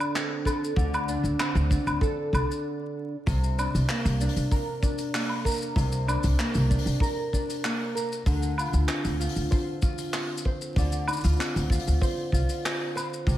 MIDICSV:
0, 0, Header, 1, 4, 480
1, 0, Start_track
1, 0, Tempo, 625000
1, 591, Time_signature, 4, 2, 24, 8
1, 10274, End_track
2, 0, Start_track
2, 0, Title_t, "Nylon-string guitar"
2, 0, Program_c, 0, 24
2, 0, Note_on_c, 0, 50, 79
2, 0, Note_on_c, 0, 60, 63
2, 0, Note_on_c, 0, 62, 59
2, 0, Note_on_c, 0, 69, 73
2, 108, Note_off_c, 0, 60, 0
2, 111, Note_on_c, 0, 60, 62
2, 342, Note_off_c, 0, 69, 0
2, 351, Note_on_c, 0, 69, 59
2, 581, Note_off_c, 0, 50, 0
2, 584, Note_on_c, 0, 50, 78
2, 827, Note_off_c, 0, 62, 0
2, 830, Note_on_c, 0, 62, 62
2, 1068, Note_off_c, 0, 60, 0
2, 1071, Note_on_c, 0, 60, 62
2, 1299, Note_off_c, 0, 62, 0
2, 1302, Note_on_c, 0, 62, 60
2, 1536, Note_off_c, 0, 69, 0
2, 1545, Note_on_c, 0, 69, 69
2, 1785, Note_off_c, 0, 62, 0
2, 1788, Note_on_c, 0, 62, 64
2, 2028, Note_off_c, 0, 69, 0
2, 2414, Note_off_c, 0, 62, 0
2, 2415, Note_off_c, 0, 50, 0
2, 2415, Note_off_c, 0, 60, 0
2, 2506, Note_on_c, 0, 48, 76
2, 2749, Note_on_c, 0, 62, 60
2, 2994, Note_on_c, 0, 58, 60
2, 3226, Note_off_c, 0, 62, 0
2, 3229, Note_on_c, 0, 62, 63
2, 3466, Note_on_c, 0, 70, 72
2, 3702, Note_off_c, 0, 62, 0
2, 3705, Note_on_c, 0, 62, 57
2, 3938, Note_off_c, 0, 58, 0
2, 3947, Note_on_c, 0, 58, 59
2, 4172, Note_off_c, 0, 70, 0
2, 4182, Note_on_c, 0, 70, 66
2, 4415, Note_off_c, 0, 48, 0
2, 4424, Note_on_c, 0, 48, 80
2, 4662, Note_off_c, 0, 62, 0
2, 4666, Note_on_c, 0, 62, 62
2, 4895, Note_off_c, 0, 58, 0
2, 4905, Note_on_c, 0, 58, 61
2, 5140, Note_off_c, 0, 62, 0
2, 5144, Note_on_c, 0, 62, 61
2, 5377, Note_off_c, 0, 70, 0
2, 5386, Note_on_c, 0, 70, 76
2, 5625, Note_off_c, 0, 62, 0
2, 5628, Note_on_c, 0, 62, 55
2, 5858, Note_off_c, 0, 58, 0
2, 5867, Note_on_c, 0, 58, 62
2, 6096, Note_off_c, 0, 70, 0
2, 6105, Note_on_c, 0, 70, 63
2, 6347, Note_off_c, 0, 48, 0
2, 6347, Note_on_c, 0, 50, 76
2, 6396, Note_off_c, 0, 70, 0
2, 6397, Note_off_c, 0, 58, 0
2, 6587, Note_off_c, 0, 62, 0
2, 6590, Note_on_c, 0, 65, 60
2, 6826, Note_on_c, 0, 60, 61
2, 7054, Note_off_c, 0, 65, 0
2, 7063, Note_on_c, 0, 65, 60
2, 7302, Note_on_c, 0, 72, 71
2, 7535, Note_off_c, 0, 65, 0
2, 7544, Note_on_c, 0, 65, 57
2, 7780, Note_off_c, 0, 60, 0
2, 7783, Note_on_c, 0, 60, 61
2, 8025, Note_off_c, 0, 72, 0
2, 8028, Note_on_c, 0, 72, 64
2, 8271, Note_off_c, 0, 50, 0
2, 8274, Note_on_c, 0, 50, 77
2, 8504, Note_off_c, 0, 65, 0
2, 8507, Note_on_c, 0, 63, 60
2, 8629, Note_off_c, 0, 63, 0
2, 8629, Note_on_c, 0, 65, 48
2, 8745, Note_off_c, 0, 60, 0
2, 8748, Note_on_c, 0, 60, 62
2, 8980, Note_off_c, 0, 65, 0
2, 8990, Note_on_c, 0, 65, 63
2, 9225, Note_off_c, 0, 72, 0
2, 9228, Note_on_c, 0, 72, 70
2, 9460, Note_off_c, 0, 65, 0
2, 9470, Note_on_c, 0, 65, 60
2, 9709, Note_off_c, 0, 60, 0
2, 9712, Note_on_c, 0, 60, 63
2, 9945, Note_off_c, 0, 72, 0
2, 9948, Note_on_c, 0, 72, 65
2, 10191, Note_on_c, 0, 48, 80
2, 10214, Note_off_c, 0, 50, 0
2, 10238, Note_off_c, 0, 65, 0
2, 10274, Note_off_c, 0, 48, 0
2, 10274, Note_off_c, 0, 60, 0
2, 10274, Note_off_c, 0, 72, 0
2, 10274, End_track
3, 0, Start_track
3, 0, Title_t, "Upright bass"
3, 0, Program_c, 1, 32
3, 589, Note_on_c, 1, 38, 95
3, 880, Note_off_c, 1, 38, 0
3, 949, Note_on_c, 1, 38, 85
3, 1026, Note_off_c, 1, 38, 0
3, 1191, Note_on_c, 1, 38, 105
3, 1344, Note_off_c, 1, 38, 0
3, 1433, Note_on_c, 1, 38, 79
3, 1508, Note_off_c, 1, 38, 0
3, 1789, Note_on_c, 1, 36, 82
3, 1866, Note_off_c, 1, 36, 0
3, 2512, Note_on_c, 1, 36, 89
3, 2802, Note_off_c, 1, 36, 0
3, 2876, Note_on_c, 1, 36, 89
3, 2950, Note_off_c, 1, 36, 0
3, 3112, Note_on_c, 1, 36, 108
3, 3264, Note_off_c, 1, 36, 0
3, 3351, Note_on_c, 1, 36, 81
3, 3428, Note_off_c, 1, 36, 0
3, 4426, Note_on_c, 1, 36, 88
3, 4719, Note_off_c, 1, 36, 0
3, 4792, Note_on_c, 1, 36, 94
3, 4868, Note_off_c, 1, 36, 0
3, 5031, Note_on_c, 1, 36, 102
3, 5184, Note_off_c, 1, 36, 0
3, 5267, Note_on_c, 1, 36, 83
3, 5345, Note_off_c, 1, 36, 0
3, 6345, Note_on_c, 1, 38, 91
3, 6638, Note_off_c, 1, 38, 0
3, 6707, Note_on_c, 1, 38, 97
3, 6785, Note_off_c, 1, 38, 0
3, 6948, Note_on_c, 1, 38, 98
3, 7102, Note_off_c, 1, 38, 0
3, 7189, Note_on_c, 1, 38, 90
3, 7266, Note_off_c, 1, 38, 0
3, 8266, Note_on_c, 1, 38, 87
3, 8559, Note_off_c, 1, 38, 0
3, 8634, Note_on_c, 1, 38, 94
3, 8709, Note_off_c, 1, 38, 0
3, 8877, Note_on_c, 1, 38, 106
3, 9027, Note_off_c, 1, 38, 0
3, 9120, Note_on_c, 1, 38, 88
3, 9192, Note_off_c, 1, 38, 0
3, 9465, Note_on_c, 1, 36, 76
3, 9545, Note_off_c, 1, 36, 0
3, 10191, Note_on_c, 1, 36, 96
3, 10274, Note_off_c, 1, 36, 0
3, 10274, End_track
4, 0, Start_track
4, 0, Title_t, "Drums"
4, 2, Note_on_c, 9, 77, 72
4, 5, Note_on_c, 9, 82, 49
4, 79, Note_off_c, 9, 77, 0
4, 81, Note_off_c, 9, 82, 0
4, 121, Note_on_c, 9, 82, 60
4, 122, Note_on_c, 9, 39, 91
4, 198, Note_off_c, 9, 39, 0
4, 198, Note_off_c, 9, 82, 0
4, 348, Note_on_c, 9, 36, 59
4, 356, Note_on_c, 9, 77, 66
4, 361, Note_on_c, 9, 82, 80
4, 425, Note_off_c, 9, 36, 0
4, 433, Note_off_c, 9, 77, 0
4, 438, Note_off_c, 9, 82, 0
4, 493, Note_on_c, 9, 82, 44
4, 570, Note_off_c, 9, 82, 0
4, 587, Note_on_c, 9, 36, 108
4, 605, Note_on_c, 9, 82, 54
4, 664, Note_off_c, 9, 36, 0
4, 681, Note_off_c, 9, 82, 0
4, 723, Note_on_c, 9, 82, 51
4, 725, Note_on_c, 9, 77, 86
4, 799, Note_off_c, 9, 82, 0
4, 802, Note_off_c, 9, 77, 0
4, 834, Note_on_c, 9, 82, 72
4, 911, Note_off_c, 9, 82, 0
4, 958, Note_on_c, 9, 82, 52
4, 1035, Note_off_c, 9, 82, 0
4, 1071, Note_on_c, 9, 77, 79
4, 1075, Note_on_c, 9, 39, 93
4, 1076, Note_on_c, 9, 82, 49
4, 1147, Note_off_c, 9, 77, 0
4, 1152, Note_off_c, 9, 39, 0
4, 1153, Note_off_c, 9, 82, 0
4, 1201, Note_on_c, 9, 82, 46
4, 1278, Note_off_c, 9, 82, 0
4, 1311, Note_on_c, 9, 36, 95
4, 1317, Note_on_c, 9, 82, 85
4, 1388, Note_off_c, 9, 36, 0
4, 1394, Note_off_c, 9, 82, 0
4, 1437, Note_on_c, 9, 77, 77
4, 1437, Note_on_c, 9, 82, 50
4, 1513, Note_off_c, 9, 77, 0
4, 1514, Note_off_c, 9, 82, 0
4, 1545, Note_on_c, 9, 36, 107
4, 1559, Note_on_c, 9, 82, 49
4, 1622, Note_off_c, 9, 36, 0
4, 1636, Note_off_c, 9, 82, 0
4, 1788, Note_on_c, 9, 36, 57
4, 1801, Note_on_c, 9, 77, 78
4, 1801, Note_on_c, 9, 82, 71
4, 1865, Note_off_c, 9, 36, 0
4, 1878, Note_off_c, 9, 77, 0
4, 1878, Note_off_c, 9, 82, 0
4, 1931, Note_on_c, 9, 82, 50
4, 2008, Note_off_c, 9, 82, 0
4, 2511, Note_on_c, 9, 36, 126
4, 2516, Note_on_c, 9, 46, 64
4, 2518, Note_on_c, 9, 82, 60
4, 2588, Note_off_c, 9, 36, 0
4, 2592, Note_off_c, 9, 46, 0
4, 2595, Note_off_c, 9, 82, 0
4, 2640, Note_on_c, 9, 82, 52
4, 2716, Note_off_c, 9, 82, 0
4, 2756, Note_on_c, 9, 77, 69
4, 2756, Note_on_c, 9, 82, 73
4, 2833, Note_off_c, 9, 77, 0
4, 2833, Note_off_c, 9, 82, 0
4, 2878, Note_on_c, 9, 46, 51
4, 2882, Note_on_c, 9, 82, 54
4, 2954, Note_off_c, 9, 46, 0
4, 2959, Note_off_c, 9, 82, 0
4, 2988, Note_on_c, 9, 82, 55
4, 2989, Note_on_c, 9, 39, 109
4, 2992, Note_on_c, 9, 46, 58
4, 3065, Note_off_c, 9, 82, 0
4, 3066, Note_off_c, 9, 39, 0
4, 3069, Note_off_c, 9, 46, 0
4, 3115, Note_on_c, 9, 46, 62
4, 3117, Note_on_c, 9, 82, 52
4, 3192, Note_off_c, 9, 46, 0
4, 3194, Note_off_c, 9, 82, 0
4, 3224, Note_on_c, 9, 46, 52
4, 3234, Note_on_c, 9, 82, 83
4, 3292, Note_off_c, 9, 46, 0
4, 3292, Note_on_c, 9, 46, 63
4, 3311, Note_off_c, 9, 82, 0
4, 3349, Note_off_c, 9, 46, 0
4, 3349, Note_on_c, 9, 46, 62
4, 3355, Note_on_c, 9, 82, 49
4, 3426, Note_off_c, 9, 46, 0
4, 3432, Note_off_c, 9, 82, 0
4, 3468, Note_on_c, 9, 36, 101
4, 3470, Note_on_c, 9, 82, 52
4, 3474, Note_on_c, 9, 46, 63
4, 3545, Note_off_c, 9, 36, 0
4, 3547, Note_off_c, 9, 82, 0
4, 3551, Note_off_c, 9, 46, 0
4, 3707, Note_on_c, 9, 36, 104
4, 3713, Note_on_c, 9, 82, 72
4, 3784, Note_off_c, 9, 36, 0
4, 3790, Note_off_c, 9, 82, 0
4, 3827, Note_on_c, 9, 82, 53
4, 3828, Note_on_c, 9, 46, 55
4, 3904, Note_off_c, 9, 82, 0
4, 3905, Note_off_c, 9, 46, 0
4, 3947, Note_on_c, 9, 46, 71
4, 3952, Note_on_c, 9, 39, 105
4, 3958, Note_on_c, 9, 82, 52
4, 4024, Note_off_c, 9, 46, 0
4, 4029, Note_off_c, 9, 39, 0
4, 4035, Note_off_c, 9, 82, 0
4, 4064, Note_on_c, 9, 77, 54
4, 4141, Note_off_c, 9, 77, 0
4, 4187, Note_on_c, 9, 36, 57
4, 4196, Note_on_c, 9, 82, 77
4, 4207, Note_off_c, 9, 82, 0
4, 4207, Note_on_c, 9, 82, 68
4, 4233, Note_off_c, 9, 82, 0
4, 4233, Note_on_c, 9, 82, 57
4, 4252, Note_off_c, 9, 82, 0
4, 4252, Note_on_c, 9, 82, 44
4, 4264, Note_off_c, 9, 36, 0
4, 4271, Note_off_c, 9, 82, 0
4, 4271, Note_on_c, 9, 82, 35
4, 4284, Note_off_c, 9, 82, 0
4, 4284, Note_on_c, 9, 82, 29
4, 4304, Note_off_c, 9, 82, 0
4, 4304, Note_on_c, 9, 82, 24
4, 4316, Note_off_c, 9, 82, 0
4, 4316, Note_on_c, 9, 82, 53
4, 4393, Note_off_c, 9, 82, 0
4, 4422, Note_on_c, 9, 36, 114
4, 4438, Note_on_c, 9, 82, 52
4, 4441, Note_on_c, 9, 46, 70
4, 4499, Note_off_c, 9, 36, 0
4, 4515, Note_off_c, 9, 82, 0
4, 4518, Note_off_c, 9, 46, 0
4, 4548, Note_on_c, 9, 82, 51
4, 4624, Note_off_c, 9, 82, 0
4, 4673, Note_on_c, 9, 77, 73
4, 4677, Note_on_c, 9, 82, 81
4, 4750, Note_off_c, 9, 77, 0
4, 4753, Note_off_c, 9, 82, 0
4, 4788, Note_on_c, 9, 82, 47
4, 4789, Note_on_c, 9, 46, 56
4, 4864, Note_off_c, 9, 82, 0
4, 4866, Note_off_c, 9, 46, 0
4, 4906, Note_on_c, 9, 46, 61
4, 4912, Note_on_c, 9, 39, 101
4, 4913, Note_on_c, 9, 82, 56
4, 4983, Note_off_c, 9, 46, 0
4, 4988, Note_off_c, 9, 39, 0
4, 4990, Note_off_c, 9, 82, 0
4, 5026, Note_on_c, 9, 82, 44
4, 5030, Note_on_c, 9, 46, 60
4, 5103, Note_off_c, 9, 82, 0
4, 5107, Note_off_c, 9, 46, 0
4, 5152, Note_on_c, 9, 36, 99
4, 5153, Note_on_c, 9, 46, 57
4, 5154, Note_on_c, 9, 82, 83
4, 5210, Note_off_c, 9, 46, 0
4, 5210, Note_on_c, 9, 46, 68
4, 5229, Note_off_c, 9, 36, 0
4, 5231, Note_off_c, 9, 82, 0
4, 5274, Note_on_c, 9, 82, 48
4, 5276, Note_off_c, 9, 46, 0
4, 5276, Note_on_c, 9, 46, 56
4, 5351, Note_off_c, 9, 82, 0
4, 5353, Note_off_c, 9, 46, 0
4, 5378, Note_on_c, 9, 36, 113
4, 5397, Note_on_c, 9, 46, 65
4, 5400, Note_on_c, 9, 82, 56
4, 5455, Note_off_c, 9, 36, 0
4, 5474, Note_off_c, 9, 46, 0
4, 5476, Note_off_c, 9, 82, 0
4, 5630, Note_on_c, 9, 36, 69
4, 5639, Note_on_c, 9, 82, 80
4, 5707, Note_off_c, 9, 36, 0
4, 5716, Note_off_c, 9, 82, 0
4, 5757, Note_on_c, 9, 46, 55
4, 5760, Note_on_c, 9, 82, 51
4, 5834, Note_off_c, 9, 46, 0
4, 5836, Note_off_c, 9, 82, 0
4, 5869, Note_on_c, 9, 46, 63
4, 5872, Note_on_c, 9, 39, 112
4, 5878, Note_on_c, 9, 82, 54
4, 5946, Note_off_c, 9, 46, 0
4, 5948, Note_off_c, 9, 39, 0
4, 5955, Note_off_c, 9, 82, 0
4, 6123, Note_on_c, 9, 82, 84
4, 6199, Note_off_c, 9, 82, 0
4, 6239, Note_on_c, 9, 82, 49
4, 6316, Note_off_c, 9, 82, 0
4, 6344, Note_on_c, 9, 46, 60
4, 6346, Note_on_c, 9, 36, 125
4, 6352, Note_on_c, 9, 82, 60
4, 6421, Note_off_c, 9, 46, 0
4, 6423, Note_off_c, 9, 36, 0
4, 6428, Note_off_c, 9, 82, 0
4, 6472, Note_on_c, 9, 82, 50
4, 6549, Note_off_c, 9, 82, 0
4, 6589, Note_on_c, 9, 77, 71
4, 6598, Note_on_c, 9, 82, 79
4, 6647, Note_on_c, 9, 46, 54
4, 6665, Note_off_c, 9, 77, 0
4, 6674, Note_off_c, 9, 82, 0
4, 6708, Note_on_c, 9, 82, 51
4, 6724, Note_off_c, 9, 46, 0
4, 6785, Note_off_c, 9, 82, 0
4, 6823, Note_on_c, 9, 39, 93
4, 6825, Note_on_c, 9, 46, 59
4, 6831, Note_on_c, 9, 82, 53
4, 6900, Note_off_c, 9, 39, 0
4, 6902, Note_off_c, 9, 46, 0
4, 6908, Note_off_c, 9, 82, 0
4, 6946, Note_on_c, 9, 82, 48
4, 6949, Note_on_c, 9, 46, 63
4, 7023, Note_off_c, 9, 82, 0
4, 7026, Note_off_c, 9, 46, 0
4, 7073, Note_on_c, 9, 46, 58
4, 7074, Note_on_c, 9, 82, 79
4, 7133, Note_off_c, 9, 46, 0
4, 7133, Note_on_c, 9, 46, 64
4, 7151, Note_off_c, 9, 82, 0
4, 7187, Note_off_c, 9, 46, 0
4, 7187, Note_on_c, 9, 46, 61
4, 7190, Note_on_c, 9, 82, 52
4, 7263, Note_off_c, 9, 46, 0
4, 7267, Note_off_c, 9, 82, 0
4, 7307, Note_on_c, 9, 46, 64
4, 7310, Note_on_c, 9, 82, 51
4, 7311, Note_on_c, 9, 36, 114
4, 7383, Note_off_c, 9, 46, 0
4, 7387, Note_off_c, 9, 82, 0
4, 7388, Note_off_c, 9, 36, 0
4, 7543, Note_on_c, 9, 82, 78
4, 7545, Note_on_c, 9, 36, 115
4, 7620, Note_off_c, 9, 82, 0
4, 7622, Note_off_c, 9, 36, 0
4, 7666, Note_on_c, 9, 46, 60
4, 7667, Note_on_c, 9, 82, 56
4, 7743, Note_off_c, 9, 46, 0
4, 7744, Note_off_c, 9, 82, 0
4, 7780, Note_on_c, 9, 46, 67
4, 7785, Note_on_c, 9, 39, 104
4, 7788, Note_on_c, 9, 82, 52
4, 7857, Note_off_c, 9, 46, 0
4, 7862, Note_off_c, 9, 39, 0
4, 7865, Note_off_c, 9, 82, 0
4, 7970, Note_on_c, 9, 82, 79
4, 8028, Note_on_c, 9, 36, 62
4, 8047, Note_off_c, 9, 82, 0
4, 8104, Note_off_c, 9, 36, 0
4, 8152, Note_on_c, 9, 82, 44
4, 8229, Note_off_c, 9, 82, 0
4, 8263, Note_on_c, 9, 46, 59
4, 8265, Note_on_c, 9, 36, 127
4, 8279, Note_on_c, 9, 82, 59
4, 8339, Note_off_c, 9, 46, 0
4, 8342, Note_off_c, 9, 36, 0
4, 8356, Note_off_c, 9, 82, 0
4, 8389, Note_on_c, 9, 82, 56
4, 8466, Note_off_c, 9, 82, 0
4, 8506, Note_on_c, 9, 77, 75
4, 8512, Note_on_c, 9, 82, 70
4, 8547, Note_off_c, 9, 82, 0
4, 8547, Note_on_c, 9, 82, 61
4, 8575, Note_off_c, 9, 82, 0
4, 8575, Note_on_c, 9, 82, 48
4, 8582, Note_off_c, 9, 77, 0
4, 8607, Note_off_c, 9, 82, 0
4, 8607, Note_on_c, 9, 82, 41
4, 8633, Note_on_c, 9, 46, 57
4, 8635, Note_off_c, 9, 82, 0
4, 8635, Note_on_c, 9, 82, 35
4, 8639, Note_off_c, 9, 82, 0
4, 8639, Note_on_c, 9, 82, 49
4, 8665, Note_off_c, 9, 82, 0
4, 8665, Note_on_c, 9, 82, 29
4, 8699, Note_off_c, 9, 82, 0
4, 8699, Note_on_c, 9, 82, 23
4, 8710, Note_off_c, 9, 46, 0
4, 8729, Note_off_c, 9, 82, 0
4, 8729, Note_on_c, 9, 82, 18
4, 8758, Note_on_c, 9, 46, 68
4, 8761, Note_on_c, 9, 39, 89
4, 8765, Note_off_c, 9, 82, 0
4, 8765, Note_on_c, 9, 82, 59
4, 8835, Note_off_c, 9, 46, 0
4, 8838, Note_off_c, 9, 39, 0
4, 8842, Note_off_c, 9, 82, 0
4, 8876, Note_on_c, 9, 46, 62
4, 8885, Note_on_c, 9, 82, 51
4, 8952, Note_off_c, 9, 46, 0
4, 8962, Note_off_c, 9, 82, 0
4, 8985, Note_on_c, 9, 36, 99
4, 8995, Note_on_c, 9, 46, 48
4, 9003, Note_on_c, 9, 82, 86
4, 9057, Note_off_c, 9, 46, 0
4, 9057, Note_on_c, 9, 46, 62
4, 9062, Note_off_c, 9, 36, 0
4, 9080, Note_off_c, 9, 82, 0
4, 9116, Note_off_c, 9, 46, 0
4, 9116, Note_on_c, 9, 46, 55
4, 9123, Note_on_c, 9, 82, 53
4, 9193, Note_off_c, 9, 46, 0
4, 9200, Note_off_c, 9, 82, 0
4, 9228, Note_on_c, 9, 36, 105
4, 9238, Note_on_c, 9, 82, 63
4, 9242, Note_on_c, 9, 46, 62
4, 9305, Note_off_c, 9, 36, 0
4, 9315, Note_off_c, 9, 82, 0
4, 9318, Note_off_c, 9, 46, 0
4, 9464, Note_on_c, 9, 36, 68
4, 9477, Note_on_c, 9, 46, 46
4, 9479, Note_on_c, 9, 82, 76
4, 9541, Note_off_c, 9, 36, 0
4, 9554, Note_off_c, 9, 46, 0
4, 9556, Note_off_c, 9, 82, 0
4, 9595, Note_on_c, 9, 82, 53
4, 9598, Note_on_c, 9, 46, 63
4, 9672, Note_off_c, 9, 82, 0
4, 9675, Note_off_c, 9, 46, 0
4, 9719, Note_on_c, 9, 46, 66
4, 9721, Note_on_c, 9, 39, 97
4, 9722, Note_on_c, 9, 82, 53
4, 9796, Note_off_c, 9, 46, 0
4, 9798, Note_off_c, 9, 39, 0
4, 9799, Note_off_c, 9, 82, 0
4, 9960, Note_on_c, 9, 77, 54
4, 9963, Note_on_c, 9, 82, 81
4, 10036, Note_off_c, 9, 77, 0
4, 10040, Note_off_c, 9, 82, 0
4, 10088, Note_on_c, 9, 82, 48
4, 10165, Note_off_c, 9, 82, 0
4, 10189, Note_on_c, 9, 36, 115
4, 10204, Note_on_c, 9, 82, 54
4, 10206, Note_on_c, 9, 46, 58
4, 10266, Note_off_c, 9, 36, 0
4, 10274, Note_off_c, 9, 46, 0
4, 10274, Note_off_c, 9, 82, 0
4, 10274, End_track
0, 0, End_of_file